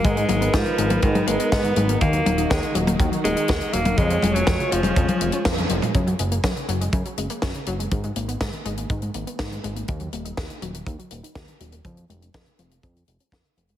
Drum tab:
HH |xxxxxxxxxxxxxxxx|xxxxxxxxxxxxxxxx|xxxxxxxxxxxxxxxx|xxxxxxxxxxxxxxxx|
SD |----o-------o---|----o-------o---|----o-------o---|----o-------o---|
T1 |--o----o-o----o-|--o----o-------o|--o----o-o--oo--|----------------|
T2 |----------------|----------------|---------------o|----------------|
BD |o---o---o---o---|o---o---o---o---|o---o---o---o---|o---o---o---o---|

HH |xxxxxxxxxxxxxxxx|xxxxxxxxxxxxxxxx|xxxxxxxxxxxxxxxx|
SD |----o-------o---|----o-------o---|----o-------o---|
T1 |----------------|----------------|----------------|
T2 |----------------|----------------|----------------|
BD |o---o---o---o---|o---o---o---o---|o---o---o---o---|